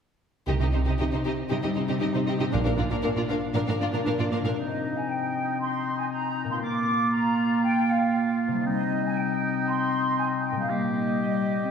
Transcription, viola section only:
0.49 0.54 D#4 soft
0.62 0.67 D#4 soft
0.75 0.80 D#4 soft
0.87 0.92 D#4 soft
1.00 1.05 D#4 soft
1.13 1.18 D#4 soft
1.26 1.31 D#4 soft
1.50 1.56 D#4 soft
1.63 1.68 D#4 soft
1.75 1.81 D#4 soft
1.87 1.93 D#4 medium
2.00 2.06 D#4 soft
2.13 2.18 D#4 soft
2.26 2.31 D#4 soft
2.39 2.44 D#4 soft
2.51 2.57 D4 medium
2.65 2.70 D4 soft
2.76 2.82 D4 soft
2.90 2.95 D4 medium
3.03 3.08 D4 soft
3.16 3.21 D4 soft
3.28 3.33 D4 medium
3.54 3.60 D4 soft
3.67 3.72 D4 soft
3.80 3.85 D4 soft
3.92 3.98 D4 medium
4.05 4.11 D4 soft
4.19 4.25 D4 soft
4.32 4.38 D4 soft
4.46 4.51 D4 soft

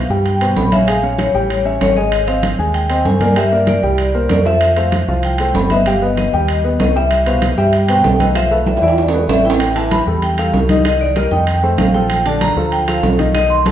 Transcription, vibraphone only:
0.26 0.58 G5 medium
0.56 0.63 B5 medium
0.72 0.88 E5 medium
0.88 1.17 F5 medium
1.19 1.80 C#5 medium
1.82 1.96 C#5 medium
1.97 2.26 D#5 medium
2.27 2.56 F5 medium
2.74 3.03 G5 medium
3.05 3.38 G#5 medium
3.37 3.69 E5 medium
3.68 4.27 D5 medium
4.31 4.38 D5 medium
4.47 4.75 E5 medium
4.78 5.06 F5 medium
5.25 5.56 G5 medium
5.56 5.63 B5 medium
5.71 5.85 E5 medium
5.87 6.19 F5 medium
6.18 6.80 D#5 medium
6.81 6.88 D#5 medium
6.97 7.28 E5 medium
7.28 7.56 F5 medium
7.59 7.73 E5 medium
7.74 7.88 G5 medium
7.89 8.21 G5 loud
8.20 8.27 D#5 medium
8.36 8.50 E5 medium
8.52 8.68 F5 medium
8.67 8.83 E5 medium
8.83 9.41 D5 medium
9.29 9.45 E5 medium
9.45 9.77 G5 medium
9.76 9.92 A5 medium
9.91 10.20 B5 medium
10.23 10.39 G5 medium
10.39 10.68 F5 medium
10.86 11.00 D#5 medium
11.01 11.17 D5 medium
11.16 11.32 D#5 medium
11.31 11.80 G5 medium
11.78 11.86 F5 medium
11.94 12.27 G5 medium
12.26 12.40 A5 medium
12.41 12.73 A#5 loud
12.72 12.79 G5 medium
12.88 13.17 F5 loud
13.35 13.49 D#5 loud
13.50 13.57 C6 loud
13.66 13.72 A5 medium

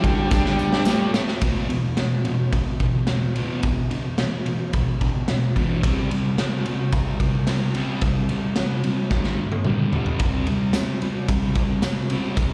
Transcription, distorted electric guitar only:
0.03 0.30 D3 loud
0.03 0.31 D4 loud
0.32 0.86 D3 medium
0.32 0.87 D4 loud
0.87 1.41 A2 medium
0.87 1.42 A3 loud
1.41 1.68 E2 medium
1.41 1.68 B2 loud
1.41 1.69 E3 medium
1.69 1.94 E2 medium
1.69 1.95 B2 medium
1.97 2.22 E2 medium
1.97 2.23 B2 loud
2.25 2.50 E2 medium
2.25 2.50 B2 medium
2.53 2.78 E2 medium
2.53 2.78 B2 medium
2.81 3.05 E2 medium
2.81 3.05 B2 medium
3.08 3.33 E2 medium
3.08 3.33 B2 medium
3.36 3.62 E2 medium
3.36 3.62 B2 medium
3.36 3.62 E3 medium
3.64 3.88 E2 medium
3.64 3.88 B2 medium
3.90 4.15 E2 medium
3.90 4.16 B2 medium
4.18 4.43 E2 medium
4.18 4.43 B2 medium
4.46 4.71 E2 medium
4.46 4.71 B2 medium
4.74 4.98 E2 medium
4.74 4.98 B2 medium
5.01 5.26 E2 medium
5.01 5.26 B2 medium
5.30 5.54 E2 medium
5.30 5.54 B2 medium
5.56 5.82 E2 medium
5.56 5.82 B2 medium
5.56 5.82 E3 loud
5.83 6.09 C3 medium
5.83 6.09 G3 loud
5.83 6.10 C4 loud
6.11 6.35 C3 medium
6.11 6.36 G3 medium
6.38 6.63 C3 medium
6.38 6.63 G3 medium
6.65 6.90 C3 medium
6.65 6.90 G3 medium
6.92 7.17 C3 medium
6.92 7.17 G3 medium
7.20 7.45 C3 medium
7.20 7.45 G3 medium
7.48 7.72 C3 medium
7.48 7.72 G3 medium
7.75 8.01 C3 medium
7.75 8.01 G3 medium
7.75 8.01 C4 medium
8.02 8.27 C3 medium
8.02 8.27 G3 medium
8.31 8.54 C3 medium
8.31 8.55 G3 medium
8.58 8.82 C3 medium
8.58 8.82 G3 medium
8.85 9.09 C3 medium
8.85 9.09 G3 medium
9.11 9.37 G2 loud
9.11 9.37 D3 loud
9.11 9.37 G3 medium
9.39 9.63 G2 medium
9.39 9.63 D3 medium
9.66 9.91 G2 medium
9.66 9.92 D3 loud
9.66 9.92 G3 medium
9.93 10.18 G2 medium
9.93 10.19 D3 medium
9.93 10.19 G3 medium
10.20 10.46 C3 medium
10.20 10.46 G3 medium
10.20 10.46 C4 loud
10.48 10.72 C3 medium
10.48 10.72 G3 medium
10.76 10.99 C3 medium
10.76 10.99 G3 medium
11.02 11.26 C3 medium
11.02 11.27 G3 medium
11.29 11.53 C3 medium
11.29 11.54 G3 medium
11.56 11.80 C3 medium
11.56 11.81 G3 medium
11.83 12.08 C3 medium
11.83 12.08 G3 medium
12.10 12.36 C3 medium
12.10 12.36 G3 loud
12.10 12.37 C4 medium
12.37 12.53 C3 medium
12.37 12.53 G3 medium

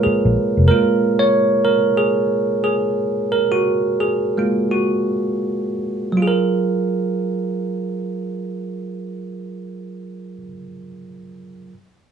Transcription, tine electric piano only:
0.00 0.66 A#2 soft
0.00 0.70 G#3 soft
0.00 0.70 A#3 soft
0.00 0.71 F4 medium
0.00 0.65 G#4 medium
0.00 0.68 A#4 medium
0.00 6.21 B4 medium
0.00 1.19 C#5 medium
0.68 1.63 G#3 soft
0.68 1.63 A#3 soft
0.68 1.64 F4 medium
0.68 1.17 A#4 medium
1.19 1.67 C#5 medium
1.65 1.99 A#4 medium
1.97 2.61 G#4 medium
2.64 3.28 G#4 medium
3.32 3.51 A#4 medium
3.52 4.02 F#4 medium
4.00 4.73 G#4 medium
4.38 6.15 G#3 soft
4.38 6.16 A#3 soft
4.38 6.16 F4 soft
4.71 5.77 F#4 medium
6.12 10.37 F#3 medium
6.17 10.41 F4 medium
6.22 10.47 G#4 medium
6.27 10.52 A#4 medium

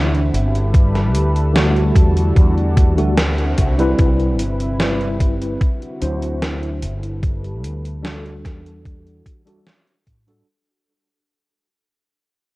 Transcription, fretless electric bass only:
0.00 0.28 D2 medium
0.33 1.15 G1 medium
1.15 1.91 D2 medium
1.96 2.36 E2 medium
2.36 2.98 E2 loud
2.98 3.53 D2 medium
3.58 3.92 C2 loud
3.99 4.40 C2 loud
4.40 5.56 G1 medium
6.02 6.84 D2 medium
6.83 7.64 G1 medium
7.64 8.45 D2 medium
8.45 9.21 E2 medium
10.07 10.41 A2 medium

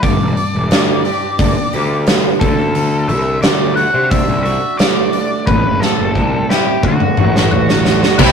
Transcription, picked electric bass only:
0.03 0.17 G1 medium
0.20 0.34 E1 medium
0.55 0.68 E1 medium
0.72 0.99 D2 medium
1.39 1.53 G1 medium
1.74 2.29 D2 medium
2.41 3.10 D2 medium
3.09 3.37 C2 medium
3.43 3.85 D2 medium
3.94 4.22 C3 medium
4.28 4.56 C2 medium
5.48 5.62 A1 medium
5.65 5.79 F#1 medium
5.99 6.13 F#1 medium
6.15 6.43 C2 medium
6.84 6.97 D2 medium
7.18 8.00 A1 medium
8.20 8.32 C2 loud

